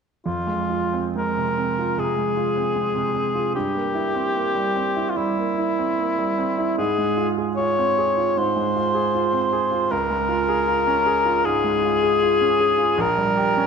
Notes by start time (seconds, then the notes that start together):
0.26 F2 F4
0.47 G#3
0.70 F4
0.93 C4
1.15 G#3 A#4
1.37 C3
1.58 C4
1.78 F4
1.98 C3 G#4
2.17 G#3
2.37 F4
2.56 C4
2.76 G#3
2.95 C3
3.15 C4
3.35 F4
3.55 G2 G4
3.75 A#3
3.95 E4
4.15 C4
4.35 A#3
4.55 G3
4.76 C4
4.96 E4
5.09 F4
5.16 G3 E4
5.38 A#3
5.58 E4
5.79 C4
5.98 A#3
6.18 G3
6.38 C4
6.58 E4
6.78 G#2 G#4
6.98 G#3
7.17 F4
7.38 G#4
7.56 F4 C#5
7.78 C4
7.98 G#4
8.17 F4
8.37 G#2 C5
8.56 G#3
8.76 F4
8.94 G#4
9.15 F4
9.33 C4
9.53 G#4
9.71 F4
9.91 C#2 A#4
10.10 G#3
10.29 F4
10.49 G#4
10.67 F4
10.87 C#4
11.06 G#4
11.25 F4
11.45 G#2 G#4
11.64 G#3
11.83 F4
12.03 G#4
12.22 F4
12.41 C#4
12.60 G#4
12.78 F4
12.98 A#1 A#4
13.18 G3
13.37 G4
13.57 C#4